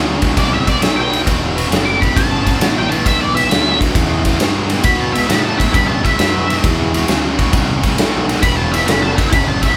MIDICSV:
0, 0, Header, 1, 6, 480
1, 0, Start_track
1, 0, Key_signature, 1, "minor"
1, 0, Tempo, 447761
1, 1356, Time_signature, 4, 2, 24, 8
1, 10471, End_track
2, 0, Start_track
2, 0, Title_t, "Lead electric guitar"
2, 0, Program_c, 0, 29
2, 410, Note_on_c, 0, 74, 99
2, 569, Note_off_c, 0, 74, 0
2, 569, Note_on_c, 0, 76, 97
2, 738, Note_off_c, 0, 76, 0
2, 738, Note_on_c, 0, 74, 100
2, 883, Note_off_c, 0, 74, 0
2, 889, Note_on_c, 0, 76, 85
2, 1022, Note_off_c, 0, 76, 0
2, 1022, Note_on_c, 0, 79, 95
2, 1289, Note_off_c, 0, 79, 0
2, 1984, Note_on_c, 0, 86, 92
2, 2144, Note_off_c, 0, 86, 0
2, 2155, Note_on_c, 0, 83, 81
2, 2310, Note_off_c, 0, 83, 0
2, 2319, Note_on_c, 0, 81, 113
2, 2937, Note_off_c, 0, 81, 0
2, 2981, Note_on_c, 0, 79, 82
2, 3101, Note_off_c, 0, 79, 0
2, 3105, Note_on_c, 0, 81, 89
2, 3264, Note_off_c, 0, 81, 0
2, 3277, Note_on_c, 0, 76, 91
2, 3431, Note_off_c, 0, 76, 0
2, 3441, Note_on_c, 0, 74, 89
2, 3588, Note_off_c, 0, 74, 0
2, 3588, Note_on_c, 0, 76, 110
2, 4056, Note_off_c, 0, 76, 0
2, 5192, Note_on_c, 0, 83, 91
2, 5347, Note_off_c, 0, 83, 0
2, 5352, Note_on_c, 0, 81, 96
2, 5499, Note_off_c, 0, 81, 0
2, 5503, Note_on_c, 0, 76, 92
2, 5663, Note_off_c, 0, 76, 0
2, 5670, Note_on_c, 0, 83, 99
2, 5797, Note_off_c, 0, 83, 0
2, 5801, Note_on_c, 0, 81, 89
2, 5972, Note_off_c, 0, 81, 0
2, 5975, Note_on_c, 0, 76, 78
2, 6133, Note_on_c, 0, 83, 94
2, 6139, Note_off_c, 0, 76, 0
2, 6294, Note_off_c, 0, 83, 0
2, 6298, Note_on_c, 0, 81, 90
2, 6460, Note_off_c, 0, 81, 0
2, 6471, Note_on_c, 0, 76, 81
2, 6619, Note_off_c, 0, 76, 0
2, 6632, Note_on_c, 0, 76, 104
2, 7098, Note_off_c, 0, 76, 0
2, 9028, Note_on_c, 0, 83, 95
2, 9175, Note_off_c, 0, 83, 0
2, 9180, Note_on_c, 0, 81, 91
2, 9342, Note_off_c, 0, 81, 0
2, 9347, Note_on_c, 0, 76, 88
2, 9500, Note_on_c, 0, 83, 84
2, 9506, Note_off_c, 0, 76, 0
2, 9663, Note_off_c, 0, 83, 0
2, 9678, Note_on_c, 0, 81, 91
2, 9822, Note_on_c, 0, 76, 78
2, 9832, Note_off_c, 0, 81, 0
2, 9966, Note_on_c, 0, 83, 102
2, 9984, Note_off_c, 0, 76, 0
2, 10136, Note_off_c, 0, 83, 0
2, 10164, Note_on_c, 0, 81, 90
2, 10307, Note_on_c, 0, 76, 99
2, 10316, Note_off_c, 0, 81, 0
2, 10467, Note_off_c, 0, 76, 0
2, 10471, End_track
3, 0, Start_track
3, 0, Title_t, "Distorted electric guitar"
3, 0, Program_c, 1, 30
3, 0, Note_on_c, 1, 40, 78
3, 0, Note_on_c, 1, 49, 80
3, 208, Note_off_c, 1, 40, 0
3, 212, Note_off_c, 1, 49, 0
3, 242, Note_on_c, 1, 40, 68
3, 245, Note_on_c, 1, 47, 66
3, 382, Note_off_c, 1, 40, 0
3, 383, Note_off_c, 1, 47, 0
3, 394, Note_on_c, 1, 40, 74
3, 397, Note_on_c, 1, 49, 85
3, 688, Note_off_c, 1, 40, 0
3, 689, Note_off_c, 1, 49, 0
3, 718, Note_on_c, 1, 40, 71
3, 726, Note_on_c, 1, 49, 81
3, 860, Note_off_c, 1, 40, 0
3, 863, Note_off_c, 1, 49, 0
3, 871, Note_on_c, 1, 40, 76
3, 877, Note_on_c, 1, 47, 93
3, 1166, Note_off_c, 1, 40, 0
3, 1169, Note_off_c, 1, 47, 0
3, 1182, Note_on_c, 1, 40, 65
3, 1192, Note_on_c, 1, 47, 77
3, 1331, Note_off_c, 1, 40, 0
3, 1336, Note_off_c, 1, 47, 0
3, 1347, Note_on_c, 1, 40, 84
3, 1358, Note_on_c, 1, 47, 87
3, 1643, Note_off_c, 1, 40, 0
3, 1649, Note_off_c, 1, 47, 0
3, 1667, Note_on_c, 1, 40, 79
3, 1678, Note_on_c, 1, 47, 85
3, 1813, Note_off_c, 1, 40, 0
3, 1819, Note_off_c, 1, 47, 0
3, 1832, Note_on_c, 1, 40, 80
3, 1833, Note_on_c, 1, 49, 83
3, 2126, Note_off_c, 1, 40, 0
3, 2126, Note_off_c, 1, 49, 0
3, 2146, Note_on_c, 1, 40, 65
3, 2151, Note_on_c, 1, 47, 71
3, 2292, Note_off_c, 1, 40, 0
3, 2295, Note_off_c, 1, 47, 0
3, 2304, Note_on_c, 1, 40, 72
3, 2313, Note_on_c, 1, 49, 84
3, 2602, Note_off_c, 1, 40, 0
3, 2606, Note_off_c, 1, 49, 0
3, 2629, Note_on_c, 1, 40, 64
3, 2632, Note_on_c, 1, 49, 76
3, 2768, Note_off_c, 1, 40, 0
3, 2775, Note_off_c, 1, 49, 0
3, 2781, Note_on_c, 1, 40, 84
3, 2786, Note_on_c, 1, 47, 97
3, 3080, Note_off_c, 1, 40, 0
3, 3082, Note_off_c, 1, 47, 0
3, 3112, Note_on_c, 1, 40, 76
3, 3116, Note_on_c, 1, 47, 78
3, 3255, Note_off_c, 1, 40, 0
3, 3257, Note_off_c, 1, 47, 0
3, 3270, Note_on_c, 1, 40, 88
3, 3277, Note_on_c, 1, 47, 84
3, 3564, Note_off_c, 1, 40, 0
3, 3568, Note_off_c, 1, 47, 0
3, 3594, Note_on_c, 1, 40, 79
3, 3603, Note_on_c, 1, 47, 84
3, 3736, Note_off_c, 1, 40, 0
3, 3740, Note_off_c, 1, 47, 0
3, 3756, Note_on_c, 1, 40, 79
3, 3756, Note_on_c, 1, 49, 84
3, 4047, Note_off_c, 1, 40, 0
3, 4047, Note_off_c, 1, 49, 0
3, 4078, Note_on_c, 1, 40, 65
3, 4083, Note_on_c, 1, 47, 67
3, 4218, Note_off_c, 1, 40, 0
3, 4220, Note_off_c, 1, 47, 0
3, 4230, Note_on_c, 1, 40, 69
3, 4235, Note_on_c, 1, 49, 88
3, 4524, Note_off_c, 1, 40, 0
3, 4526, Note_off_c, 1, 49, 0
3, 4558, Note_on_c, 1, 40, 69
3, 4562, Note_on_c, 1, 49, 77
3, 4697, Note_off_c, 1, 40, 0
3, 4699, Note_off_c, 1, 49, 0
3, 4711, Note_on_c, 1, 40, 90
3, 4720, Note_on_c, 1, 47, 86
3, 5004, Note_off_c, 1, 40, 0
3, 5009, Note_off_c, 1, 47, 0
3, 5033, Note_on_c, 1, 47, 74
3, 5034, Note_on_c, 1, 40, 63
3, 5175, Note_off_c, 1, 40, 0
3, 5175, Note_off_c, 1, 47, 0
3, 5195, Note_on_c, 1, 40, 79
3, 5201, Note_on_c, 1, 47, 95
3, 5486, Note_off_c, 1, 40, 0
3, 5489, Note_off_c, 1, 47, 0
3, 5523, Note_on_c, 1, 40, 82
3, 5530, Note_on_c, 1, 47, 83
3, 5655, Note_off_c, 1, 40, 0
3, 5664, Note_off_c, 1, 47, 0
3, 5668, Note_on_c, 1, 40, 77
3, 5677, Note_on_c, 1, 49, 90
3, 5963, Note_off_c, 1, 40, 0
3, 5967, Note_off_c, 1, 49, 0
3, 5988, Note_on_c, 1, 47, 71
3, 5989, Note_on_c, 1, 40, 65
3, 6128, Note_off_c, 1, 40, 0
3, 6132, Note_off_c, 1, 47, 0
3, 6141, Note_on_c, 1, 40, 79
3, 6142, Note_on_c, 1, 49, 88
3, 6439, Note_off_c, 1, 40, 0
3, 6440, Note_off_c, 1, 49, 0
3, 6471, Note_on_c, 1, 40, 69
3, 6472, Note_on_c, 1, 49, 84
3, 6614, Note_off_c, 1, 40, 0
3, 6614, Note_off_c, 1, 49, 0
3, 6637, Note_on_c, 1, 40, 83
3, 6643, Note_on_c, 1, 47, 90
3, 6927, Note_off_c, 1, 40, 0
3, 6930, Note_off_c, 1, 47, 0
3, 6962, Note_on_c, 1, 40, 75
3, 6968, Note_on_c, 1, 47, 79
3, 7100, Note_off_c, 1, 40, 0
3, 7103, Note_off_c, 1, 47, 0
3, 7122, Note_on_c, 1, 40, 83
3, 7128, Note_on_c, 1, 47, 90
3, 7410, Note_off_c, 1, 40, 0
3, 7413, Note_off_c, 1, 47, 0
3, 7441, Note_on_c, 1, 40, 70
3, 7448, Note_on_c, 1, 47, 88
3, 7572, Note_off_c, 1, 40, 0
3, 7582, Note_off_c, 1, 47, 0
3, 7585, Note_on_c, 1, 40, 78
3, 7593, Note_on_c, 1, 49, 95
3, 7882, Note_off_c, 1, 40, 0
3, 7886, Note_off_c, 1, 49, 0
3, 7902, Note_on_c, 1, 40, 67
3, 7914, Note_on_c, 1, 47, 74
3, 8050, Note_off_c, 1, 40, 0
3, 8056, Note_off_c, 1, 47, 0
3, 8064, Note_on_c, 1, 40, 76
3, 8076, Note_on_c, 1, 49, 88
3, 8362, Note_off_c, 1, 40, 0
3, 8368, Note_off_c, 1, 49, 0
3, 8385, Note_on_c, 1, 40, 76
3, 8391, Note_on_c, 1, 49, 83
3, 8532, Note_off_c, 1, 40, 0
3, 8535, Note_off_c, 1, 49, 0
3, 8544, Note_on_c, 1, 40, 78
3, 8549, Note_on_c, 1, 47, 96
3, 8842, Note_off_c, 1, 40, 0
3, 8844, Note_off_c, 1, 47, 0
3, 8880, Note_on_c, 1, 40, 73
3, 8886, Note_on_c, 1, 47, 75
3, 9011, Note_off_c, 1, 40, 0
3, 9022, Note_off_c, 1, 47, 0
3, 9024, Note_on_c, 1, 40, 79
3, 9033, Note_on_c, 1, 47, 92
3, 9322, Note_off_c, 1, 40, 0
3, 9327, Note_off_c, 1, 47, 0
3, 9357, Note_on_c, 1, 40, 83
3, 9359, Note_on_c, 1, 47, 85
3, 9486, Note_off_c, 1, 40, 0
3, 9499, Note_off_c, 1, 47, 0
3, 9499, Note_on_c, 1, 40, 85
3, 9504, Note_on_c, 1, 49, 86
3, 9800, Note_off_c, 1, 40, 0
3, 9802, Note_off_c, 1, 49, 0
3, 9831, Note_on_c, 1, 40, 60
3, 9832, Note_on_c, 1, 47, 75
3, 9976, Note_off_c, 1, 40, 0
3, 9976, Note_off_c, 1, 47, 0
3, 9989, Note_on_c, 1, 40, 75
3, 9994, Note_on_c, 1, 49, 95
3, 10285, Note_off_c, 1, 40, 0
3, 10287, Note_off_c, 1, 49, 0
3, 10309, Note_on_c, 1, 40, 69
3, 10317, Note_on_c, 1, 49, 91
3, 10455, Note_off_c, 1, 40, 0
3, 10459, Note_off_c, 1, 49, 0
3, 10471, End_track
4, 0, Start_track
4, 0, Title_t, "Fingered electric bass"
4, 0, Program_c, 2, 33
4, 0, Note_on_c, 2, 38, 91
4, 379, Note_off_c, 2, 38, 0
4, 401, Note_on_c, 2, 36, 79
4, 860, Note_off_c, 2, 36, 0
4, 867, Note_on_c, 2, 35, 84
4, 1337, Note_off_c, 2, 35, 0
4, 1365, Note_on_c, 2, 28, 89
4, 1819, Note_off_c, 2, 28, 0
4, 1825, Note_on_c, 2, 30, 88
4, 2295, Note_off_c, 2, 30, 0
4, 2322, Note_on_c, 2, 31, 77
4, 2781, Note_off_c, 2, 31, 0
4, 2787, Note_on_c, 2, 33, 85
4, 3256, Note_off_c, 2, 33, 0
4, 3278, Note_on_c, 2, 35, 86
4, 3741, Note_off_c, 2, 35, 0
4, 3760, Note_on_c, 2, 38, 83
4, 4222, Note_off_c, 2, 38, 0
4, 4235, Note_on_c, 2, 40, 89
4, 4700, Note_off_c, 2, 40, 0
4, 4718, Note_on_c, 2, 43, 89
4, 5181, Note_off_c, 2, 43, 0
4, 5192, Note_on_c, 2, 47, 86
4, 5658, Note_off_c, 2, 47, 0
4, 5675, Note_on_c, 2, 45, 80
4, 6140, Note_off_c, 2, 45, 0
4, 6158, Note_on_c, 2, 43, 82
4, 6458, Note_off_c, 2, 43, 0
4, 6640, Note_on_c, 2, 42, 87
4, 7102, Note_off_c, 2, 42, 0
4, 7118, Note_on_c, 2, 40, 96
4, 7581, Note_off_c, 2, 40, 0
4, 7603, Note_on_c, 2, 38, 88
4, 8064, Note_off_c, 2, 38, 0
4, 8072, Note_on_c, 2, 36, 86
4, 8539, Note_off_c, 2, 36, 0
4, 8545, Note_on_c, 2, 35, 82
4, 9016, Note_off_c, 2, 35, 0
4, 9031, Note_on_c, 2, 28, 90
4, 9499, Note_off_c, 2, 28, 0
4, 9514, Note_on_c, 2, 30, 83
4, 9981, Note_off_c, 2, 30, 0
4, 10003, Note_on_c, 2, 31, 80
4, 10466, Note_off_c, 2, 31, 0
4, 10471, End_track
5, 0, Start_track
5, 0, Title_t, "Muted fingered electric bass strokes"
5, 6484, Note_on_c, 9, 29, 43
5, 6591, Note_off_c, 9, 29, 0
5, 10471, End_track
6, 0, Start_track
6, 0, Title_t, "Drums"
6, 235, Note_on_c, 9, 51, 73
6, 240, Note_on_c, 9, 36, 88
6, 342, Note_off_c, 9, 51, 0
6, 347, Note_off_c, 9, 36, 0
6, 398, Note_on_c, 9, 36, 97
6, 398, Note_on_c, 9, 51, 87
6, 505, Note_off_c, 9, 36, 0
6, 505, Note_off_c, 9, 51, 0
6, 722, Note_on_c, 9, 36, 78
6, 723, Note_on_c, 9, 51, 74
6, 829, Note_off_c, 9, 36, 0
6, 830, Note_off_c, 9, 51, 0
6, 881, Note_on_c, 9, 51, 91
6, 892, Note_on_c, 9, 38, 106
6, 988, Note_off_c, 9, 51, 0
6, 999, Note_off_c, 9, 38, 0
6, 1215, Note_on_c, 9, 51, 65
6, 1322, Note_off_c, 9, 51, 0
6, 1361, Note_on_c, 9, 36, 97
6, 1364, Note_on_c, 9, 51, 91
6, 1469, Note_off_c, 9, 36, 0
6, 1471, Note_off_c, 9, 51, 0
6, 1692, Note_on_c, 9, 51, 76
6, 1800, Note_off_c, 9, 51, 0
6, 1845, Note_on_c, 9, 51, 89
6, 1856, Note_on_c, 9, 38, 98
6, 1952, Note_off_c, 9, 51, 0
6, 1963, Note_off_c, 9, 38, 0
6, 2167, Note_on_c, 9, 36, 79
6, 2177, Note_on_c, 9, 51, 64
6, 2274, Note_off_c, 9, 36, 0
6, 2284, Note_off_c, 9, 51, 0
6, 2321, Note_on_c, 9, 36, 103
6, 2328, Note_on_c, 9, 51, 90
6, 2429, Note_off_c, 9, 36, 0
6, 2435, Note_off_c, 9, 51, 0
6, 2643, Note_on_c, 9, 36, 74
6, 2645, Note_on_c, 9, 51, 68
6, 2751, Note_off_c, 9, 36, 0
6, 2752, Note_off_c, 9, 51, 0
6, 2800, Note_on_c, 9, 51, 92
6, 2810, Note_on_c, 9, 38, 115
6, 2907, Note_off_c, 9, 51, 0
6, 2918, Note_off_c, 9, 38, 0
6, 3128, Note_on_c, 9, 51, 61
6, 3235, Note_off_c, 9, 51, 0
6, 3279, Note_on_c, 9, 36, 98
6, 3283, Note_on_c, 9, 51, 95
6, 3386, Note_off_c, 9, 36, 0
6, 3390, Note_off_c, 9, 51, 0
6, 3612, Note_on_c, 9, 51, 69
6, 3719, Note_off_c, 9, 51, 0
6, 3765, Note_on_c, 9, 51, 84
6, 3776, Note_on_c, 9, 38, 105
6, 3873, Note_off_c, 9, 51, 0
6, 3883, Note_off_c, 9, 38, 0
6, 4082, Note_on_c, 9, 36, 87
6, 4092, Note_on_c, 9, 51, 70
6, 4189, Note_off_c, 9, 36, 0
6, 4199, Note_off_c, 9, 51, 0
6, 4235, Note_on_c, 9, 36, 109
6, 4240, Note_on_c, 9, 51, 93
6, 4343, Note_off_c, 9, 36, 0
6, 4347, Note_off_c, 9, 51, 0
6, 4555, Note_on_c, 9, 51, 72
6, 4558, Note_on_c, 9, 36, 74
6, 4662, Note_off_c, 9, 51, 0
6, 4665, Note_off_c, 9, 36, 0
6, 4716, Note_on_c, 9, 51, 90
6, 4727, Note_on_c, 9, 38, 111
6, 4823, Note_off_c, 9, 51, 0
6, 4834, Note_off_c, 9, 38, 0
6, 5034, Note_on_c, 9, 51, 66
6, 5141, Note_off_c, 9, 51, 0
6, 5184, Note_on_c, 9, 51, 95
6, 5191, Note_on_c, 9, 36, 107
6, 5291, Note_off_c, 9, 51, 0
6, 5298, Note_off_c, 9, 36, 0
6, 5525, Note_on_c, 9, 51, 72
6, 5633, Note_off_c, 9, 51, 0
6, 5678, Note_on_c, 9, 51, 90
6, 5689, Note_on_c, 9, 38, 105
6, 5785, Note_off_c, 9, 51, 0
6, 5796, Note_off_c, 9, 38, 0
6, 6003, Note_on_c, 9, 36, 84
6, 6012, Note_on_c, 9, 51, 77
6, 6110, Note_off_c, 9, 36, 0
6, 6119, Note_off_c, 9, 51, 0
6, 6156, Note_on_c, 9, 36, 107
6, 6161, Note_on_c, 9, 51, 89
6, 6263, Note_off_c, 9, 36, 0
6, 6268, Note_off_c, 9, 51, 0
6, 6482, Note_on_c, 9, 36, 78
6, 6490, Note_on_c, 9, 51, 65
6, 6590, Note_off_c, 9, 36, 0
6, 6597, Note_off_c, 9, 51, 0
6, 6635, Note_on_c, 9, 51, 85
6, 6646, Note_on_c, 9, 38, 109
6, 6742, Note_off_c, 9, 51, 0
6, 6753, Note_off_c, 9, 38, 0
6, 6970, Note_on_c, 9, 51, 63
6, 7078, Note_off_c, 9, 51, 0
6, 7116, Note_on_c, 9, 51, 85
6, 7117, Note_on_c, 9, 36, 109
6, 7224, Note_off_c, 9, 36, 0
6, 7224, Note_off_c, 9, 51, 0
6, 7443, Note_on_c, 9, 51, 67
6, 7550, Note_off_c, 9, 51, 0
6, 7592, Note_on_c, 9, 51, 86
6, 7603, Note_on_c, 9, 38, 96
6, 7699, Note_off_c, 9, 51, 0
6, 7710, Note_off_c, 9, 38, 0
6, 7921, Note_on_c, 9, 36, 83
6, 7923, Note_on_c, 9, 51, 66
6, 8028, Note_off_c, 9, 36, 0
6, 8030, Note_off_c, 9, 51, 0
6, 8073, Note_on_c, 9, 51, 93
6, 8074, Note_on_c, 9, 36, 104
6, 8180, Note_off_c, 9, 51, 0
6, 8182, Note_off_c, 9, 36, 0
6, 8398, Note_on_c, 9, 51, 71
6, 8400, Note_on_c, 9, 36, 79
6, 8505, Note_off_c, 9, 51, 0
6, 8507, Note_off_c, 9, 36, 0
6, 8558, Note_on_c, 9, 51, 95
6, 8568, Note_on_c, 9, 38, 108
6, 8665, Note_off_c, 9, 51, 0
6, 8676, Note_off_c, 9, 38, 0
6, 8889, Note_on_c, 9, 51, 66
6, 8900, Note_on_c, 9, 38, 31
6, 8996, Note_off_c, 9, 51, 0
6, 9007, Note_off_c, 9, 38, 0
6, 9034, Note_on_c, 9, 51, 97
6, 9036, Note_on_c, 9, 36, 100
6, 9141, Note_off_c, 9, 51, 0
6, 9143, Note_off_c, 9, 36, 0
6, 9366, Note_on_c, 9, 51, 72
6, 9473, Note_off_c, 9, 51, 0
6, 9519, Note_on_c, 9, 51, 94
6, 9530, Note_on_c, 9, 38, 102
6, 9626, Note_off_c, 9, 51, 0
6, 9637, Note_off_c, 9, 38, 0
6, 9843, Note_on_c, 9, 36, 89
6, 9846, Note_on_c, 9, 51, 73
6, 9950, Note_off_c, 9, 36, 0
6, 9953, Note_off_c, 9, 51, 0
6, 9997, Note_on_c, 9, 36, 114
6, 9997, Note_on_c, 9, 51, 93
6, 10104, Note_off_c, 9, 51, 0
6, 10105, Note_off_c, 9, 36, 0
6, 10321, Note_on_c, 9, 36, 75
6, 10321, Note_on_c, 9, 51, 73
6, 10428, Note_off_c, 9, 36, 0
6, 10428, Note_off_c, 9, 51, 0
6, 10471, End_track
0, 0, End_of_file